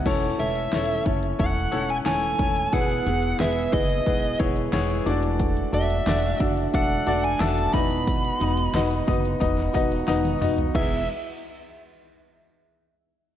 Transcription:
<<
  \new Staff \with { instrumentName = "Lead electric guitar" } { \time 4/4 \key e \major \tempo 4 = 90 r8 e''4 r8 fis''8. gis''16 gis''4 | fis''4 e''8 dis''4 r4. | r8 e''4 r8 fis''8. gis''16 a''8 b''8~ | b''2. r4 |
e''8 r2. r8 | }
  \new Staff \with { instrumentName = "Upright piano" } { \time 4/4 \key e \major <cis' e' a' cis''>8 <cis' e' a' cis''>8 <cis' e' a' cis''>8 <cis' e' a' cis''>8 <cis' e' a' cis''>8 <cis' e' a' cis''>8 <cis' e' a' cis''>8 <cis' e' a' cis''>8 | <b e' gis' b'>8 <b e' gis' b'>8 <b e' gis' b'>8 <b e' gis' b'>8 <b e' gis' b'>8 <b e' gis' cis''>8 <b e' gis' cis''>8 <d' fis' a' d''>8~ | <d' fis' a' d''>8 <d' fis' a' d''>8 <d' fis' a' d''>8 <d' fis' a' e''>8 <d' fis' a' e''>8 <d' fis' a' d''>8 <d' fis' a' e''>8 <dis' fis' b' dis''>8~ | <dis' fis' b' dis''>8 <dis' fis' b' dis''>8 <dis' fis' b' dis''>8 <dis' fis' b' dis''>8 <dis' fis' b' dis''>8 <dis' fis' b' dis''>8 <dis' fis' b' dis''>8 <dis' fis' b' dis''>8 |
<e' gis' b' e''>8 r2. r8 | }
  \new Staff \with { instrumentName = "Upright piano" } { \clef bass \time 4/4 \key e \major e4. r2 r8 | b,4. r2 e8~ | e4 r2 r8 e8~ | e4 r2. |
e,8 r2. r8 | }
  \new Staff \with { instrumentName = "Steel-string acoustic guitar" } { \time 4/4 \key e \major <e a cis' a'>8 <a cis' a'>8 <e a cis' a'>8 <a cis' a'>4 <a cis' a'>8 <e a a'>4 | <e b e' gis'>8 <b e' gis'>8 <e b e' gis'>8 <b e' gis'>4 <b e' gis'>8 <e b e' gis'>8 <e a d' fis'>8~ | <e a d' fis'>8 <a d' fis'>8 <e a d' fis'>8 <a d' fis'>4 <a d' fis'>8 <e a d' fis'>8 <e b dis' fis'>8~ | <e b dis' fis'>8 <b dis' fis'>8 <e b dis' fis'>8 <b dis' fis'>4 <b dis' fis'>8 <e b dis' fis'>4 |
<e b e' gis'>8 r2. r8 | }
  \new Staff \with { instrumentName = "Upright bass" } { \clef bass \time 4/4 \key e \major e,,8 e,,8 e,,8 fis,,8 e,,8 e,,8 e,,8 e,,8 | e,,8 e,,8 e,,8 fis,,8 e,,8 e,,8 e,,8 e,,8~ | e,,8 e,,8 e,,8 fis,,8 e,,8 e,,8 e,,8 e,,8~ | e,,8 e,,8 e,,8 fis,,8 e,,8 e,,8 e,,8 e,,8 |
e,,8 r2. r8 | }
  \new DrumStaff \with { instrumentName = "Drums" } \drummode { \time 4/4 <cymc hh bd>16 hh16 hh16 hh16 <hh sn>8 <hh bd>16 hh16 <hh bd>8 hh16 hh16 <hh sn>16 hh16 <hh bd>16 hh16 | <hh bd>16 hh16 hh16 hh16 <hh sn>8 <hh bd>16 hh16 <hh bd>8 <hh bd>16 hh16 <hh sn>16 hh16 hh16 hh16 | <hh bd>16 hh16 hh16 hh16 <hh sn>8 <hh bd>16 hh16 <hh bd>8 hh16 hh16 <hh sn>16 hh16 <hh bd>16 hh16 | <hh bd>16 hh16 hh16 hh16 <hh sn>16 hh16 <hh bd>16 hh16 <hh bd>16 sn16 <hh bd>16 hh16 <hh sn>16 <hh tommh>16 <hho toml>16 <hh tomfh>16 |
<cymc bd tomfh>4 r4 r4 r4 | }
>>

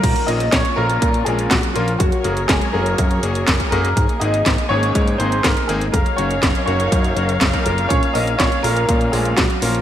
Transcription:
<<
  \new Staff \with { instrumentName = "Grand piano" } { \time 4/4 \key bes \minor \tempo 4 = 122 <bes bes'>8 <ees' ees''>8 <des' des''>8 <bes bes'>4 <aes aes'>8 <ges ges'>8 <f f'>8 | <ges ges'>8 <bes bes'>8 <aes aes'>8 <bes bes'>2 <bes bes'>8~ | <bes bes'>8 <ees' ees''>4 <des' des''>4 <c' c''>8 <bes bes'>8 <aes aes'>8 | <bes bes'>8 <des' des''>4 <des' des''>4. r8 <bes bes'>8 |
<des' des''>8 <ees' ees''>8 <des' des''>8 <bes bes'>4 <aes aes'>8 <ges ges'>8 <f f'>8 | }
  \new Staff \with { instrumentName = "String section" } { \time 4/4 \key bes \minor <bes des' f'>1 | <ges ges' aes' bes' des''>1 | <bes ees'>1 | <ges ees' bes' des'' f''>1 |
<bes des'>1 | }
  \new Staff \with { instrumentName = "Electric grand piano" } { \time 4/4 \key bes \minor r8 <bes, bes des' f' bes'>16 r8. <bes, bes des' f' bes'>4 <bes, bes des' f' bes'>8 r8 <bes des' f' bes'>16 r16 | r8 <bes des' ges' aes'>16 r8. <bes des' ges' aes'>4 <bes des' ges' aes'>8 r8 <aes, bes des' ges' aes'>16 r16 | r8 <aes, bes c' ees' aes'>16 r8. <aes, aes bes ees' aes'>4 <aes, bes c' ees' aes'>8 r8 <bes c' ees' aes'>16 r16 | r8 <bes des' ees' ges'>16 r8. <bes des' ees' ges'>4 <bes des' ees' ges'>16 r8 <bes des' ees' bes'>16 <bes, bes des' f' bes'>8~ |
<bes, bes des' f' bes'>8 <bes, bes des' f' bes'>16 r8. <bes, bes des' f' bes'>4 <bes, bes des' f' bes'>8 r8 <bes des' f' bes'>16 r16 | }
  \new Staff \with { instrumentName = "Analog synth bass" } { \clef bass \time 4/4 \key bes \minor bes,,8 bes,,8 bes,,8 bes,,8 bes,8 bes,,8 bes,,8 bes,,8 | ges,,8 ges,,8 ges,,8 ges,,8 ges,8 ges,,8 ges,,8 ges,,8 | aes,,8 aes,,8 aes,,8 aes,,8 aes,8 aes,,8 aes,,8 aes,,8 | ges,,8 ges,,8 ges,,8 ges,,8 ges,8 ges,,8 ges,,8 ges,,8 |
bes,,8 bes,,8 bes,,8 bes,,8 bes,8 bes,,8 bes,,8 bes,,8 | }
  \new DrumStaff \with { instrumentName = "Drums" } \drummode { \time 4/4 <cymc hh bd>16 hh16 hh16 hh16 <hc hh bd sn>16 hh8 hh16 <hh bd>16 hh16 hh16 hh16 <hc hh bd sn>16 hh16 hh16 hh16 | <hh bd>16 hh16 hh16 hh16 <hc hh bd sn>16 hh8 hh16 <hh bd>16 hh16 hh16 hh16 <hc hh bd sn>16 <hh bd>16 hh16 hh16 | <hh bd>16 hh16 hh16 hh16 <hc hh bd sn>16 hh8 hh16 <hh bd>16 hh16 hh16 hh16 <hc hh bd sn>16 hh16 hh16 hh16 | <hh bd>16 hh16 hh16 hh16 <hc hh bd sn>16 hh16 hh16 hh16 <hh bd>16 hh16 hh16 hh16 <hc hh bd sn>16 <hh bd>16 hh16 hh16 |
<hh bd>16 hh16 hho16 hh16 <hc hh bd sn>16 hh16 hho16 hh16 <hh bd>16 hh16 hho16 hh16 <hc hh bd sn>16 hh16 hho16 hh16 | }
>>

